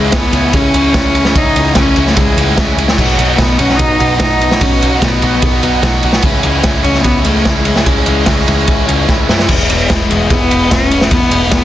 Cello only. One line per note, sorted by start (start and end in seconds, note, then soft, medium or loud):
0.00 0.15 G#3 loud
0.13 0.55 B3 medium
0.54 1.39 C#4 loud
1.37 1.77 D#4 loud
1.78 2.05 C#4 loud
2.09 2.17 A3 medium
2.18 2.46 G#3 medium
2.50 2.57 G#3 medium
2.58 2.86 G#3 medium
3.37 3.59 B3 medium
3.58 3.78 C#4 medium
3.76 4.19 D#4 loud
4.20 4.63 D#4 loud
4.62 5.02 C#4 medium
5.03 6.00 B3 medium
6.83 7.03 C#4 loud
7.04 7.23 B3 loud
7.25 7.45 A3 medium
7.45 7.56 A3 medium
7.56 7.85 G#3 medium
7.86 9.04 G#3 medium
9.89 10.32 G#3 medium
10.31 10.72 B3 medium
10.70 11.10 C#4 medium
11.11 11.49 B3 medium
11.51 11.64 B3 medium